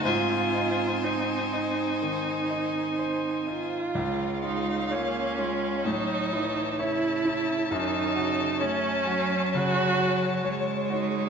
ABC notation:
X:1
M:4/4
L:1/8
Q:1/4=64
K:Abmix
V:1 name="Violin"
a8 | f4 =a4- | =a8 |]
V:2 name="Violin"
c8 | d8 | d8 |]
V:3 name="Grand piano"
A,, E c E E, E c E | D,, F d F =A,, =E ^c E | G,, G d G D, G d G |]
V:4 name="Viola"
F2 E4- E F- | F E D2 E2 =E2 | E2 D2 G2 z E |]
V:5 name="Cello" clef=bass
C6- C z | A,2 B, A, G, =E, ^C,2 | E, D, =A, G,3 _A,2 |]